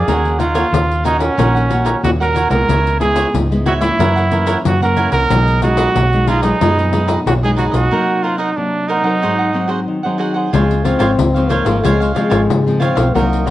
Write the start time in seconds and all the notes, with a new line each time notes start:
Already playing: G#4
0.07 D#2 D#3 A#3 C#4 D#4 F#4 A#4 C#5 F#5, pandeiro
0.25 pandeiro
0.39 D#4 F4 A#4 C#5 F#5, pandeiro
0.54 A#3 C#4 D#4 A#4 C#5 F#5, pandeiro
0.72 D#2 A#2, pandeiro
0.91 pandeiro
1.04 A#3 C#4 D#4 F#4 A#4 C#5 F#5, pandeiro
1.19 C#4 A#4 C#5 F#5, pandeiro
1.37 A#1 D#3 A#3 C#4 D#4 F#4 A#4 C#5 F#5, pandeiro
1.54 A#4 C#5 F#5, pandeiro
1.69 A#3 C#4 D#4 F#4 A#4 C#5 F#5, pandeiro
1.85 D#4 A#4 C#5 F#5, pandeiro
2.03 D#2 A#2 F#4, pandeiro
2.20 A#3 C#4 F#4 A#4 C#5 F#5, pandeiro
2.35 D#4 A#4 C#5 F#5, pandeiro
2.50 C2 G#3 B3 E4 A#4 C#5 F#5, pandeiro
2.68 C#2 C#3 E4 C#5 E5, pandeiro
2.87 pandeiro
3.00 G#3 B3 E4 G#4 B4 C#5 E5, pandeiro
3.16 E4 B4 C#5 E5, pandeiro
3.34 C#2 G#2, pandeiro
3.51 G#3 B3 E4, pandeiro
3.65 E4 F#4 B4 C#5 E5, pandeiro
3.80 E3 A#3 C#4 E4 B4 C#5 E5, pandeiro
3.99 F#2 E4 A#4 C#5 F#5, pandeiro
4.16 A#4 C#5 F#5, pandeiro
4.31 E3 A#3 C#4 E4 A#4 C#5 F#5, pandeiro
4.46 E4 A#4 C#5 F#5, pandeiro
4.65 F#2 C#3 F#4, pandeiro
4.82 E3 A#3 C#4 A#4 C#5 F#5, pandeiro
4.96 E4 A#4 C#5 F#5, pandeiro
5.12 C2 A#4 C#5 F#5, pandeiro
5.30 B1 B2 F#3 G#3 D#4 G#4 D#5, pandeiro
5.48 pandeiro
5.62 F#3 G#3 D#4 F#4 G#4 B4 D#5, pandeiro
5.77 D#4 G#4 B4 D#5, pandeiro
5.96 B1 F#2, pandeiro
6.13 F#3 G#3 D#4, pandeiro
6.27 D#4 F4 G#4 B4 D#5, pandeiro
6.42 F#3 G#3 D#4 G#4 B4 D#5, pandeiro
6.61 F#2 B2 F#3 G#3 D#4 G#4 B4 D#5, pandeiro
6.78 G#4 B4 D#5, pandeiro
6.92 F#3 G#3 D#4 G#4 B4 D#5, pandeiro
7.07 D#4 G#4 B4 D#5, pandeiro
7.26 B1 F#2 F#4, pandeiro
7.43 F#3 G#3 D#4 G#4 B4 D#5, pandeiro
7.56 D#4 F#4 G#4 B4 D#5, pandeiro
7.71 B1 F#4 G#4 B4 D#5, pandeiro
7.91 C3 F#3 A#3 D#4 A#4 C5 F#5
8.23 D#4 F4 A#4 C5 F#5
8.38 D#4 A#4 C5 F#5
8.56 C3 F#3 A#3 D4
8.88 D#4 A#4 C5 F#5
9.04 F#3 C4 D#4 A#4 C5 F#5
9.22 G#2 F#4 G#4 C5 F#5
9.39 G#4 C5 F#5
9.53 F#3 C4 D#4 F#4 G#4 C5 F#5
9.68 F#4 G#4 C5 F#5
9.88 D#3
10.03 F#3 C4 D#4 G#4 C5 F#5
10.18 F#4 G#4 C5 F#5
10.34 G#4 C5 F#5
10.53 C#2 C#3 F3 G#3 C4 F4 C5 C#5 F5, pandeiro
10.71 pandeiro
10.85 F3 G#3 C4 F4 C5 C#5 F5, pandeiro
10.99 G#1 F4 C5 C#5 F5, pandeiro
11.18 C#2 G#2, pandeiro
11.35 F3 G#3 C4 C5 C#5 F5, pandeiro
11.49 A#3 F4 C5 C#5 F5, pandeiro
11.65 G#1 F3 G#3 C4 C5 C#5 F5, pandeiro
11.83 C#2 C#3 F3 G#3 C4 F4 C5 C#5 F5, pandeiro
12.00 C5 C#5 F5, pandeiro
12.15 F3 G#3 C4 F4 C5 C#5 F5, pandeiro
12.30 G#1 F4 C5 C#5 F5, pandeiro
12.50 G#2 C#3, pandeiro
12.66 F3 G#3 C4, pandeiro
12.80 C4 F4 C5 C#5 F5, pandeiro
12.95 B1 C5 C#5 F5, pandeiro
13.14 C2 C3 F#3 A#3 D#4 F#4 A#4 C5 D#5, pandeiro
13.33 pandeiro
13.45 F#3 A#3 D#4 F#4 A#4 C5, pandeiro